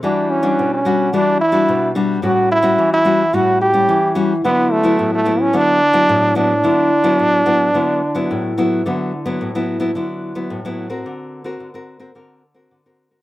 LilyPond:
<<
  \new Staff \with { instrumentName = "Trombone" } { \time 4/4 \key d \major \tempo 4 = 109 d'8 cis'8. cis'8. d'8 e'4 r8 | fis'8 e'8. e'8. fis'8 g'4 r8 | b8 a8. a8 cis'16 d'4. d'8~ | d'2.~ d'8 r8 |
r1 | r1 | }
  \new Staff \with { instrumentName = "Nylon-string guitar" } { \time 4/4 \key d \major << { <g d' fis'>8. <g d' fis'>8. <g d' fis'>8 <g d' fis'>8 r16 <g d' fis'>8. <g d' fis'>8 | <g cis' fis'>8. <g cis' fis'>8. <g cis' fis'>16 r16 <g cis' fis'>8. <g cis'>8. <g cis' fis'>16 r16 | <fis b e'>8. <fis b e'>8. <fis b e'>8 <fis b e'>8 r16 <fis b e'>8. <fis b e'>16 r16 | <fis b e'>8 r16 <fis b e'>8. <fis b e'>8 <fis b e'>8 r16 <fis b e'>8. <fis b e'>8 |
<fis b e'>8 r16 <fis b e'>8 <fis b e'>8 <fis b e'>16 <fis b e'>8. <fis b e'>8 <fis b e'>8 <c' fis' bes'>16~ | <c' fis' bes'>8. <c' fis' ais'>8 <c' fis' ais'>8 <c' fis' ais'>16 <c' fis' ais'>8 r16 <c' fis' ais'>8 <c' fis' ais'>8 <c' fis' ais'>16 | } \\ { e4 b,4 e4 b,4 | a,4 e4 a,4 e4 | d4 a,4 d4 a,4 | d4 a,4 d4 a,4 |
d4 a,4 d4 a,4 | d4 d4 d4 d4 | } >> }
>>